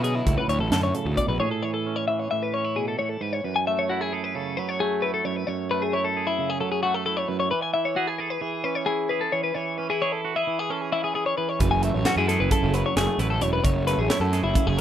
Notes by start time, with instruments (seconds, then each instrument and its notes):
Already playing: picked electric bass B2, clean electric guitar D3 C#4 F#4
0.04 clean electric guitar F#3 G#4, closed hi-hat
0.15 clean electric guitar E4
0.26 picked electric bass C#2, clean electric guitar A2, kick, closed hi-hat
0.38 clean electric guitar B4
0.48 picked electric bass D2, clean electric guitar E4 C#5, closed hi-hat
0.59 picked electric bass A1, clean electric guitar A4
0.71 picked electric bass F#2, clean electric guitar D3 A4, snare, closed hi-hat
0.83 clean electric guitar C#5
0.95 clean electric guitar C#3 A4, closed hi-hat
1.05 picked electric bass D2
1.17 clean electric guitar B2 D5, kick, closed hi-hat
1.28 picked electric bass A#1, clean electric guitar B4
1.40 clean electric guitar A2 G#4 C#5
1.51 clean electric guitar A4
1.63 clean electric guitar E3 C#5
1.74 clean electric guitar A4
1.86 clean electric guitar C#4
1.96 clean electric guitar C#5
2.08 clean electric guitar E3 E5
2.20 clean electric guitar C#5
2.31 clean electric guitar A2 E5
2.43 clean electric guitar B4
2.54 clean electric guitar C#4 C#5
2.65 clean electric guitar E4
2.76 clean electric guitar B2 G#4
2.88 clean electric guitar A4
2.99 clean electric guitar A2 C#5
3.09 clean electric guitar A4
3.21 clean electric guitar G#2 B4
3.33 clean electric guitar C#5
3.44 clean electric guitar F#2 B4
3.56 clean electric guitar G#5
3.67 clean electric guitar A3 E5
3.79 clean electric guitar C#5
3.90 clean electric guitar E4 F#4
4.01 clean electric guitar G#4
4.12 clean electric guitar G#4 A4
4.24 clean electric guitar B4
4.35 clean electric guitar C#3 A4
4.57 clean electric guitar F#3 B4
4.69 clean electric guitar C#5
4.80 clean electric guitar A3 G#4
5.02 clean electric guitar E4 B4
5.14 clean electric guitar A4
5.25 clean electric guitar F#2 C#5
5.36 clean electric guitar B4
5.47 clean electric guitar F#2 C#5
5.71 clean electric guitar A3 B4
5.82 clean electric guitar G#4
5.93 clean electric guitar E4 C#5
6.04 clean electric guitar A4
6.17 clean electric guitar G#4
6.27 clean electric guitar E4
6.39 clean electric guitar C#3
6.50 clean electric guitar G#4
6.60 clean electric guitar F#3 A4
6.72 clean electric guitar G#4
6.83 clean electric guitar A3 F#4
6.95 clean electric guitar A4
7.06 clean electric guitar E4 A4
7.17 clean electric guitar C#5
7.28 clean electric guitar F#2 B4
7.40 clean electric guitar C#5
7.51 clean electric guitar E3 B4
7.62 clean electric guitar G#5
7.74 clean electric guitar E4 E5
7.85 clean electric guitar C#5
7.96 clean electric guitar F#4 G#4
8.08 clean electric guitar G#4
8.18 clean electric guitar G#4 A4
8.30 clean electric guitar B4
8.41 clean electric guitar E3 G#4
8.64 clean electric guitar C#4 B4
8.75 clean electric guitar C#5
8.86 clean electric guitar E4 G#4
9.09 clean electric guitar G#4 B4
9.21 clean electric guitar A4
9.32 clean electric guitar E3 C#5
9.44 clean electric guitar B4
9.55 clean electric guitar E3 C#5
9.78 clean electric guitar C#4 B4
9.90 clean electric guitar E4 G#4
10.02 clean electric guitar G#4 C#5
10.12 clean electric guitar A4
10.25 clean electric guitar F#4
10.36 clean electric guitar E4 G#4
10.47 clean electric guitar E3
10.59 clean electric guitar G#4
10.70 clean electric guitar C#4 A4
10.82 clean electric guitar G#4
10.93 clean electric guitar E4
11.04 clean electric guitar G#4
11.15 clean electric guitar G#4
11.26 clean electric guitar C#5
11.38 clean electric guitar E3 B4
11.49 clean electric guitar C#5
11.60 picked electric bass F#1, clean electric guitar F#2 B4, kick, closed hi-hat
11.71 clean electric guitar G#5
11.82 clean electric guitar A3 E5, closed hi-hat
11.94 picked electric bass A1, clean electric guitar C#5
12.05 clean electric guitar C#4 F#4, snare, closed hi-hat
12.16 picked electric bass F#2, clean electric guitar E4 G#4
12.28 clean electric guitar G#4 A4, snare, closed hi-hat
12.40 picked electric bass F#1, clean electric guitar B4
12.51 clean electric guitar C#3 A4, kick, closed hi-hat
12.63 picked electric bass F#1
12.74 clean electric guitar F#3 B4, closed hi-hat
12.86 clean electric guitar C#5
12.97 picked electric bass F#1, clean electric guitar A3 G#4, snare, closed hi-hat
13.18 picked electric bass A1, clean electric guitar E4 B4, closed hi-hat
13.30 clean electric guitar A4
13.41 picked electric bass E1, clean electric guitar F#2 C#5, closed hi-hat
13.53 clean electric guitar B4
13.64 picked electric bass F#1, clean electric guitar F#2 C#5, kick, closed hi-hat
13.87 clean electric guitar A3 B4, snare, closed hi-hat
13.98 picked electric bass A1, clean electric guitar G#4
14.10 clean electric guitar E4 C#5, snare, closed hi-hat
14.20 picked electric bass F#2, clean electric guitar A4
14.33 clean electric guitar G#4, snare, closed hi-hat
14.43 picked electric bass F#1, clean electric guitar E4
14.54 clean electric guitar C#3, kick, closed hi-hat
14.67 picked electric bass F#1, clean electric guitar G#4
14.77 clean electric guitar F#3